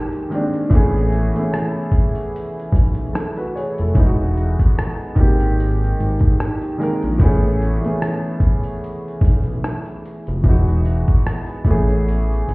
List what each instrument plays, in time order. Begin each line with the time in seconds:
Already playing: upright piano D#3 G#3 A#3 C4 G4
0.12 closed hi-hat
0.30 upright piano D#3 G#3 A#3 C4, closed hi-hat
0.35 upright piano D4
0.53 closed hi-hat
0.70 analog synth bass A1, upright piano E3 A3 B3 C#4, kick, closed hi-hat
0.75 upright piano G#4
1.13 closed hi-hat
1.34 upright piano E3 A3 B3 C#4, closed hi-hat
1.39 upright piano E4
1.54 cross-stick, closed hi-hat
1.92 kick, closed hi-hat
2.15 closed hi-hat
2.36 closed hi-hat
2.59 closed hi-hat
2.72 analog synth bass B1, kick, closed hi-hat
2.95 closed hi-hat
3.13 upright piano E4 A4, cross-stick, closed hi-hat
3.37 upright piano F#4 B4, closed hi-hat
3.55 upright piano G#4 C#5, closed hi-hat
3.78 analog synth bass F1, upright piano E4 A4, closed hi-hat
3.95 analog synth bass E1, upright piano E3 G#3 B3, kick, closed hi-hat
3.99 upright piano D#4 E4
4.06 upright piano F#4
4.37 closed hi-hat
4.59 kick, closed hi-hat
4.79 cross-stick, closed hi-hat
5.15 analog synth bass G#1, upright piano D#3 G#3 A#3 C4, kick, closed hi-hat
5.20 upright piano G4
5.40 closed hi-hat
5.60 closed hi-hat
5.84 closed hi-hat
6.00 analog synth bass G#1, closed hi-hat
6.19 kick, closed hi-hat
6.40 cross-stick, closed hi-hat
6.62 closed hi-hat
6.78 upright piano D#3 G#3 A#3, closed hi-hat
6.82 upright piano C4 A#4
7.02 analog synth bass A#1, closed hi-hat
7.18 analog synth bass A1, upright piano E3 A3 B3, kick, closed hi-hat
7.22 upright piano C#4 G#4
7.62 closed hi-hat
7.81 upright piano E3 A3 B3, closed hi-hat
7.85 upright piano C#4 G#4
8.02 cross-stick, closed hi-hat
8.40 kick, closed hi-hat
8.63 closed hi-hat
8.84 closed hi-hat
9.08 closed hi-hat
9.21 analog synth bass B1, kick, closed hi-hat
9.44 closed hi-hat
9.64 cross-stick, closed hi-hat
9.85 closed hi-hat
10.06 closed hi-hat
10.27 analog synth bass F1, closed hi-hat
10.44 analog synth bass E1, upright piano E3 G#3 B3, kick, closed hi-hat
10.48 upright piano D#4 F#4
10.68 closed hi-hat
10.85 closed hi-hat
11.08 kick, closed hi-hat
11.27 cross-stick, closed hi-hat
11.46 closed hi-hat
11.65 analog synth bass A1, upright piano E3 A3 B3, kick, closed hi-hat
11.70 upright piano C#4 G#4
11.88 closed hi-hat
12.09 closed hi-hat
12.33 closed hi-hat
12.48 analog synth bass G#1, closed hi-hat